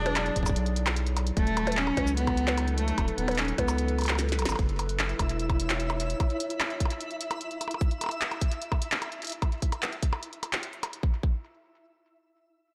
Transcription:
Already playing: analog synth bass E1, ambient pad F#3 E4 G#4 D5, cello D4
0.06 closed hi-hat, percussion blips
0.16 clap, closed hi-hat, percussion blips
0.26 closed hi-hat
0.36 analog synth bass D1, kick, closed hi-hat
0.43 kick, closed hi-hat, cabasa, percussion blips
0.49 kick
0.56 analog synth bass B1, closed hi-hat
0.66 closed hi-hat
0.76 closed hi-hat
0.86 clap, closed hi-hat, percussion blips
0.96 closed hi-hat
1.07 closed hi-hat
1.17 closed hi-hat, percussion blips
1.27 closed hi-hat
1.37 analog synth bass D#1, cello A3, kick, closed hi-hat
1.47 closed hi-hat
1.57 ambient pad D#4, closed hi-hat, percussion blips
1.66 ambient pad A4 B4, closed hi-hat, percussion blips
1.72 closed hi-hat
1.77 cello C#4, clap
1.87 percussion blips
1.97 analog synth bass C#2, kick, closed hi-hat, percussion blips
2.07 cabasa
2.17 cello B3, closed hi-hat
2.27 kick, closed hi-hat, percussion blips
2.37 closed hi-hat
2.48 clap, closed hi-hat, percussion blips
2.58 closed hi-hat, percussion blips
2.68 closed hi-hat
2.78 cello A3, closed hi-hat
2.88 closed hi-hat
2.98 analog synth bass D#1, kick, closed hi-hat, percussion blips
3.08 closed hi-hat
3.18 analog synth bass D#1, cello B3, closed hi-hat
3.28 closed hi-hat, percussion blips
3.31 closed hi-hat
3.35 cello C#4, clap, closed hi-hat
3.38 closed hi-hat
3.42 closed hi-hat
3.45 closed hi-hat
3.48 closed hi-hat
3.58 analog synth bass C#2, cello B3, kick, closed hi-hat, percussion blips
3.68 closed hi-hat, cabasa, percussion blips
3.78 closed hi-hat
3.88 closed hi-hat
3.99 closed hi-hat, percussion blips
4.01 closed hi-hat, percussion blips
4.04 closed hi-hat, percussion blips
4.06 clap, closed hi-hat, percussion blips
4.12 percussion blips
4.15 snare, closed hi-hat, cabasa, percussion blips
4.29 snare, closed hi-hat
4.39 analog synth bass B1, closed hi-hat, percussion blips
4.42 snare, percussion blips
4.46 analog synth bass G#1, closed hi-hat, cabasa, percussion blips
4.49 percussion blips
4.52 percussion blips
4.56 analog synth bass F#1, synth texture E4 E5, kick, closed hi-hat, percussion blips
4.69 ambient pad E4, closed hi-hat
4.79 closed hi-hat, percussion blips
4.89 closed hi-hat
4.99 clap, closed hi-hat
5.09 closed hi-hat
5.19 analog synth bass E1, kick, closed hi-hat, percussion blips
5.27 ambient pad C#5, closed hi-hat
5.40 closed hi-hat
5.50 kick, closed hi-hat, percussion blips
5.60 closed hi-hat
5.70 clap, closed hi-hat
5.80 closed hi-hat
5.90 closed hi-hat, percussion blips
6.00 closed hi-hat
6.10 closed hi-hat
6.20 kick, closed hi-hat, percussion blips
6.30 closed hi-hat
6.40 closed hi-hat
6.50 closed hi-hat
6.60 clap, closed hi-hat, percussion blips
6.70 closed hi-hat
6.80 kick, closed hi-hat
6.85 percussion blips
6.90 closed hi-hat
7.01 closed hi-hat
7.11 closed hi-hat
7.21 closed hi-hat
7.31 closed hi-hat, percussion blips
7.41 closed hi-hat
7.51 closed hi-hat
7.61 closed hi-hat, percussion blips
7.68 closed hi-hat, percussion blips
7.74 percussion blips
7.81 kick, closed hi-hat
7.91 closed hi-hat
8.01 closed hi-hat, percussion blips
8.04 percussion blips
8.06 percussion blips
8.09 closed hi-hat, percussion blips
8.21 clap, closed hi-hat
8.31 closed hi-hat, percussion blips
8.41 kick, closed hi-hat
8.52 closed hi-hat
8.62 closed hi-hat
8.72 kick, percussion blips
8.82 closed hi-hat
8.92 clap, closed hi-hat
9.02 closed hi-hat, percussion blips
9.12 closed hi-hat
9.22 closed hi-hat
9.25 closed hi-hat
9.27 closed hi-hat
9.30 closed hi-hat
9.32 closed hi-hat
9.42 kick, closed hi-hat, percussion blips
9.52 closed hi-hat
9.62 kick, closed hi-hat
9.72 closed hi-hat, percussion blips
9.82 clap, closed hi-hat
9.93 closed hi-hat
10.03 kick, closed hi-hat
10.13 percussion blips
10.23 closed hi-hat
10.33 closed hi-hat
10.43 closed hi-hat, percussion blips
10.53 clap, closed hi-hat
10.63 closed hi-hat
10.73 closed hi-hat
10.83 closed hi-hat, percussion blips
10.93 closed hi-hat
11.03 kick
11.23 kick

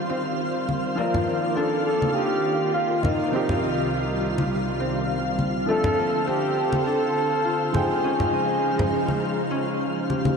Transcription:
Already playing: string machine D#3 G3 F4 C5, grand piano F3 D#4 G4 C5, harp C#4 D#4 F4, synth texture F4 F5
0.10 harp C4
0.69 high conga
0.95 grand piano F3 C4 D5, harp A#3, string machine A#3 D5, flugelhorn F4
0.99 grand piano D#3 A#4
1.14 low conga
1.27 harp C4
1.56 harp D4, flugelhorn A4
1.85 flugelhorn A4
2.02 high conga
2.15 harp D#4, flugelhorn G4
2.74 harp F4, flugelhorn F4
3.03 harp A#3, flugelhorn D#4, high conga, low conga
3.31 string machine C2 G3, grand piano C3 F3 A#3 C4, harp C4
3.35 grand piano D#4 G4
3.49 low conga
3.62 harp D#4
4.38 high conga
4.80 harp C4
5.39 high conga
5.66 string machine D3 A4 C5, grand piano F3 C4, harp A3, flugelhorn A4
5.70 grand piano D4 A4
5.84 low conga
5.98 harp A#3
6.27 harp C4, flugelhorn G4
6.73 high conga
6.86 harp D4, flugelhorn A4
7.45 harp F4
7.72 string machine C#3 F3 G#3 D#4, grand piano F3 D#4 C5, harp C4, flugelhorn G#4, high conga, low conga
7.77 grand piano G5
8.04 harp C#4
8.20 low conga
8.33 harp D#4
8.79 low conga
9.08 high conga
9.51 harp C#4
10.10 harp G4, high conga
10.25 high conga

